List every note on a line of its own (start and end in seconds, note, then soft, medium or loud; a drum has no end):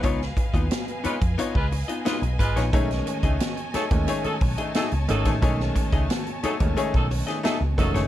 0.00 0.31 C#2 loud
0.00 0.20 B3 loud
0.00 0.20 D#4 medium
0.00 0.20 F4 medium
0.00 2.70 B4 medium
0.00 8.07 D#5 medium
0.00 2.70 F5 medium
0.00 8.07 G#5 medium
0.00 kick loud
0.00 closed hi-hat medium
0.04 0.21 C#5 loud
0.22 snare soft
0.37 muted hollow-body jazz guitar stroke soft
0.37 kick medium
0.37 closed hi-hat medium
0.54 0.68 D#2 medium
0.54 0.68 B3 medium
0.54 0.68 D#4 medium
0.54 0.67 F4 medium
0.54 0.67 D#5 medium
0.54 kick medium
0.54 closed hi-hat soft
0.71 muted hollow-body jazz guitar stroke soft
0.71 snare loud
0.71 closed hi-hat medium
0.88 closed hi-hat soft
1.04 1.16 G#3 medium
1.04 1.17 B3 medium
1.04 1.18 D#4 medium
1.04 1.18 F4 medium
1.04 1.16 F4 medium
1.04 1.16 B4 medium
1.04 1.18 C#5 medium
1.04 muted picked electric bass stroke medium
1.04 closed hi-hat medium
1.21 1.35 F2 medium
1.21 muted hollow-body jazz guitar stroke soft
1.21 kick loud
1.21 closed hi-hat soft
1.38 1.55 B3 medium
1.38 1.55 D#4 medium
1.38 1.55 F4 medium
1.38 1.56 C#5 medium
1.38 muted picked electric bass stroke soft
1.38 closed hi-hat medium
1.55 1.82 C#2 loud
1.55 1.66 G#3 medium
1.55 1.66 F4 medium
1.55 1.66 B4 medium
1.55 kick medium
1.72 muted hollow-body jazz guitar stroke soft
1.72 open hi-hat medium
1.88 2.02 B3 soft
1.88 2.02 D#4 soft
1.88 2.02 F4 medium
1.88 2.02 D#5 medium
1.88 closed hi-hat medium
2.05 2.17 G#3 medium
2.05 2.22 B3 medium
2.05 2.22 D#4 medium
2.05 2.23 F4 medium
2.05 2.17 F4 medium
2.05 2.17 B4 medium
2.05 2.23 D#5 medium
2.05 snare medium
2.05 closed hi-hat medium
2.22 2.36 B1 medium
2.22 closed hi-hat soft
2.39 2.53 G#1 medium
2.39 2.61 G#3 loud
2.39 2.61 F4 loud
2.39 2.61 B4 loud
2.39 muted hollow-body jazz guitar stroke soft
2.39 kick medium
2.39 closed hi-hat medium
2.56 2.70 A#1 medium
2.56 2.70 B3 medium
2.56 2.70 D#4 medium
2.56 2.70 F4 medium
2.56 2.69 C#5 medium
2.56 snare soft
2.56 closed hi-hat soft
2.73 3.00 B1 loud
2.73 3.54 D#3 medium
2.73 3.54 G#3 medium
2.73 2.90 A3 medium
2.73 3.54 A3 medium
2.73 3.54 C#4 loud
2.73 2.90 D#4 medium
2.73 2.90 G#4 medium
2.73 8.07 C#5 medium
2.73 2.90 C#5 medium
2.73 8.07 A5 medium
2.73 kick loud
2.73 closed hi-hat medium
2.91 snare soft
2.91 closed hi-hat soft
3.06 muted hollow-body jazz guitar stroke soft
3.06 closed hi-hat medium
3.23 3.37 C#2 medium
3.23 3.37 A3 soft
3.23 3.37 D#4 soft
3.23 3.37 G#4 medium
3.23 3.37 D#5 medium
3.23 kick medium
3.23 closed hi-hat soft
3.40 muted hollow-body jazz guitar stroke soft
3.40 snare loud
3.40 closed hi-hat medium
3.57 closed hi-hat soft
3.74 3.85 F#3 medium
3.74 3.87 A3 medium
3.74 3.85 D#4 medium
3.74 3.87 D#4 medium
3.74 3.88 G#4 medium
3.74 3.85 A4 medium
3.74 3.88 C#5 medium
3.74 muted picked electric bass stroke medium
3.74 snare soft
3.74 closed hi-hat medium
3.91 4.05 D#2 medium
3.91 4.72 D#3 medium
3.91 4.72 G#3 medium
3.91 4.72 A3 medium
3.91 4.72 C#4 medium
3.91 muted hollow-body jazz guitar stroke soft
3.91 kick loud
3.91 closed hi-hat soft
4.07 4.24 A3 medium
4.07 4.24 D#4 medium
4.07 4.25 G#4 medium
4.07 4.25 C#5 medium
4.07 closed hi-hat medium
4.24 4.35 F#3 medium
4.24 4.35 D#4 medium
4.24 4.35 A4 medium
4.24 muted picked electric bass stroke soft
4.24 closed hi-hat soft
4.41 4.55 B1 medium
4.41 muted hollow-body jazz guitar stroke soft
4.41 kick loud
4.41 open hi-hat medium
4.58 4.72 A3 soft
4.58 4.72 D#4 medium
4.58 4.71 G#4 medium
4.58 4.71 D#5 medium
4.58 closed hi-hat medium
4.75 4.86 F#3 medium
4.75 4.92 A3 medium
4.75 4.86 D#4 medium
4.75 4.92 D#4 medium
4.75 4.92 G#4 medium
4.75 4.86 A4 medium
4.75 4.92 D#5 medium
4.75 snare loud
4.75 closed hi-hat medium
4.91 5.06 C#2 loud
4.91 closed hi-hat soft
5.08 5.26 G#1 loud
5.08 5.32 D#3 loud
5.08 5.30 F#3 medium
5.08 5.32 G#3 medium
5.08 5.32 A3 medium
5.08 5.32 C#4 loud
5.08 5.30 D#4 loud
5.08 5.30 A4 loud
5.08 muted hollow-body jazz guitar stroke soft
5.08 closed hi-hat medium
5.25 5.39 A1 medium
5.25 5.39 A3 medium
5.25 5.39 D#4 medium
5.25 5.39 G#4 medium
5.25 5.39 C#5 medium
5.25 kick medium
5.25 snare soft
5.25 closed hi-hat medium
5.41 5.69 B1 loud
5.41 6.22 D#3 medium
5.41 6.23 G#3 medium
5.41 5.59 A3 loud
5.41 6.23 A3 medium
5.41 6.23 C#4 loud
5.41 5.59 D#4 medium
5.41 5.59 G#4 loud
5.41 5.60 C#5 medium
5.41 kick loud
5.41 closed hi-hat medium
5.60 snare soft
5.76 muted hollow-body jazz guitar stroke soft
5.76 kick medium
5.76 closed hi-hat medium
5.92 6.06 C#2 medium
5.92 6.07 A3 soft
5.92 6.06 D#4 soft
5.92 6.06 G#4 medium
5.92 6.06 D#5 medium
5.92 kick medium
5.92 closed hi-hat soft
6.10 muted hollow-body jazz guitar stroke soft
6.10 snare loud
6.10 closed hi-hat medium
6.27 closed hi-hat soft
6.43 6.54 F#3 medium
6.43 6.56 A3 medium
6.43 6.54 D#4 medium
6.43 6.57 D#4 medium
6.43 6.57 G#4 medium
6.43 6.54 A4 medium
6.43 6.57 C#5 medium
6.43 muted picked electric bass stroke soft
6.43 closed hi-hat medium
6.60 6.74 D#2 medium
6.60 6.67 C#3 medium
6.60 7.41 G#3 medium
6.60 7.41 A3 medium
6.60 7.41 C#4 loud
6.60 muted hollow-body jazz guitar stroke medium
6.60 kick loud
6.60 closed hi-hat medium
6.66 7.44 D#3 medium
6.77 6.93 A3 medium
6.77 6.94 D#4 medium
6.77 6.94 G#4 loud
6.77 6.94 C#5 loud
6.77 muted picked electric bass stroke soft
6.77 closed hi-hat medium
6.94 7.21 B1 loud
6.94 7.05 F#3 medium
6.94 7.05 D#4 medium
6.94 7.05 A4 medium
6.94 kick medium
6.94 closed hi-hat soft
7.10 muted hollow-body jazz guitar stroke soft
7.10 open hi-hat medium
7.27 7.41 A3 medium
7.27 7.41 D#4 medium
7.27 7.41 G#4 medium
7.27 7.40 D#5 medium
7.27 snare soft
7.27 closed hi-hat medium
7.43 7.55 F#3 medium
7.43 7.60 A3 loud
7.43 7.61 D#4 medium
7.43 7.55 D#4 medium
7.43 7.61 G#4 medium
7.43 7.55 A4 medium
7.43 7.61 D#5 medium
7.43 snare loud
7.43 closed hi-hat medium
7.61 7.74 C#2 medium
7.78 7.91 F1 loud
7.78 8.01 D#3 loud
7.78 8.00 F#3 loud
7.78 8.01 G#3 medium
7.78 8.01 A3 medium
7.78 8.01 C#4 loud
7.78 8.00 D#4 loud
7.78 8.00 A4 loud
7.78 muted hollow-body jazz guitar stroke soft
7.78 kick medium
7.78 closed hi-hat medium
7.94 8.07 F#1 medium
7.94 8.07 A3 medium
7.94 8.07 D#4 medium
7.94 8.07 G#4 medium
7.94 8.07 C#5 medium
7.94 snare soft
7.94 closed hi-hat soft